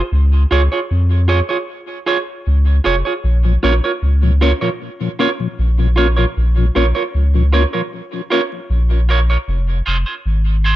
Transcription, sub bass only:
0.12 C#2
0.51 C#2
0.91 F2
2.47 C#2
2.86 F1
3.24 A#1
3.64 A#1
4.02 C#2
5.59 A#1
6.37 A#1
6.76 A#1
7.15 C#2
8.70 A#1
9.48 F1
9.87 F1
10.26 G#1

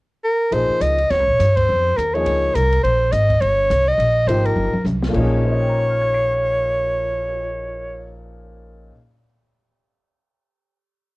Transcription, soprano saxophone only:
0.24 A#4
0.53 C5
0.82 D#5
1.11 C#5
1.56 C5
1.97 A#4
2.14 C#5
2.55 A#4
2.83 C5
3.12 D#5
3.41 C#5
3.88 D#5
4.27 C5
4.46 A#4
5.15 C#5

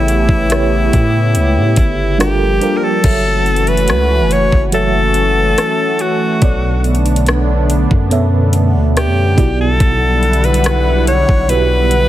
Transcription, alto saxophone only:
Already playing: E4
2.20 G4
2.77 A#4
2.84 A4
3.68 B4
4.32 C#5
4.75 A4
6.01 F#4
8.98 G4
9.61 A4
10.45 B4
11.08 C#5
11.50 B4

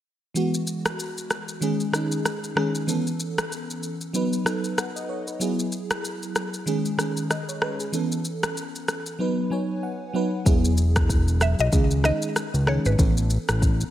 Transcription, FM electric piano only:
0.34 E3 G#3 B3 F#4
1.61 D#3 G#3 C#4 G#4
1.92 D#3 G#3 C#4 D#4
2.55 D#3 G#3 C#4 G#4
2.87 E3 B3 C#4 A4
4.13 F#3 B3 D#4 B4
4.45 F#3 B3 D#4 A4
4.78 F#5
4.96 D#5
5.09 C#5
5.28 B4
5.40 F#3 B3 E4 G#4
6.66 D#3 G#3 C#4 G#4
6.97 D#3 G#3 C#4 G#4
7.30 D#5
7.49 C#5
7.62 B4
7.80 G#4
7.92 E3 B3 C#4 A4
9.19 F#3 B3 D#4 B4
9.50 F#3 B3 D#4 C#5 G#5
9.83 F#5
10.13 F#3 B3 D#4 B4 F#5
10.45 F#3 B3 E4 G#4
11.71 D#3 G#3 C#4 G#4
12.03 D#3 G#3 C#4 D#4
12.66 D#3 G#3 C#4 G#4
12.98 E3 B3 C#4 A4

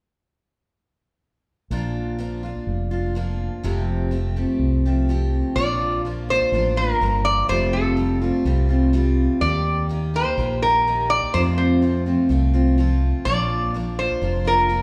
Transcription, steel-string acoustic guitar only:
1.71 A#2 F3 A#3 D4 F4
2.18 F3 A#3 D4 F4
2.43 A#3 D4 F4
2.91 A#3 D4 F4
3.15 F3 A#3 D4 F4
3.63 F2 C3 F3 A3 C4 G4
4.11 F3 A3 C4 G4
4.36 F3 A3 C4 G4
4.86 F3 A3 C4 G4
5.09 F3 A3 C4 G4
5.57 A#2 F3 A#3 D4 F4
6.05 F3 A#3 D4 F4
6.29 A#3 D4 F4
6.53 F3 A#3 D4 F4
6.76 A#3 D4 F4
7.01 F3 A#3 D4 F4
7.48 F2 C3 G3 A3 C4 F4
7.97 G3 A3 C4 F4
8.21 G3 A3 C4 F4
8.45 G3 A3 C4 F4
8.69 G3 A3 C4 F4
8.93 G3 A3 C4 F4
9.41 D#3 A#3 D#4 G4
9.89 D#3 A#3 D#4 G4
10.14 A#3 D#4 G4
10.38 D#3 A#3 D#4 G4
10.62 A#3 D#4 G4
10.87 D#3 A#3 D#4 G4
11.34 F2 C3 F3 A3 C4 F4
11.82 F3 A3 C4 F4
12.06 F3 A3 C4 F4
12.29 F3 A3 C4 F4
12.54 F3 A3 C4 F4
12.78 F3 A3 C4 F4
13.26 A#2 F3 A#3 D4 F4
13.74 F3 A#3 D4 F4
13.99 A#3 D4 F4
14.22 F3 A#3 D4 F4
14.45 A#3 D4 F4
14.69 F3 A#3 D4 F4

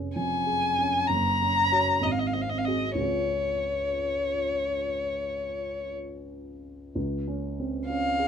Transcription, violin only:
0.16 G#5
1.07 A#5
2.03 D#5
2.12 F5
2.19 D#5
2.27 F5
2.34 D#5
2.42 F5
2.50 D#5
2.58 F5
2.65 D#5
2.97 C#5
7.88 F5

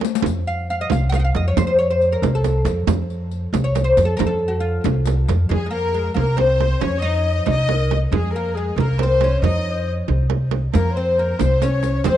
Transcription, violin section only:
5.51 G#4
5.72 A#4
6.15 A#4
6.38 C5
6.81 C#5
7.02 D#5
7.48 D#5
8.13 G#4
8.34 A#4
8.55 G#4
8.78 A#4
9.00 C5
9.43 D#5
10.74 A#4
10.96 C5
11.18 A#4
11.41 C5
11.62 C#5
12.06 C5

